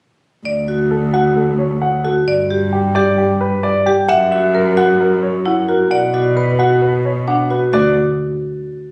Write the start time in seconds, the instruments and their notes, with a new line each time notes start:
0.45 cello D2, marimba D5
0.68 marimba F#4
0.91 grand piano A4
1.14 marimba F#4, grand piano F#5
1.36 grand piano A4
1.59 grand piano C#5
1.82 grand piano F#5
2.04 marimba F#4, grand piano A4
2.27 cello G2, marimba D5
2.50 marimba G4
2.73 grand piano G4
2.95 marimba G4, grand piano D5
3.18 grand piano G4
3.41 grand piano B4
3.63 grand piano D5
3.86 grand piano G4, marimba G4
4.08 cello F#2, marimba E5, grand piano F#5
4.31 marimba F#4, grand piano E5
4.54 grand piano A#4, marimba A#4
4.77 marimba F#4, grand piano F#5
5.00 grand piano A#4
5.23 grand piano C#5
5.46 marimba E4, grand piano F#5
5.68 marimba F#4, grand piano A#4
5.91 cello B2, marimba D5, grand piano F#5
6.14 marimba F#4, grand piano D5
6.36 grand piano B4, marimba B4
6.59 marimba F#4, grand piano F#5
6.82 grand piano B4
7.05 grand piano C#5
7.28 marimba D4, grand piano F#5
7.51 marimba F#4, grand piano B4
7.73 cello D2, marimba F#4, grand piano D5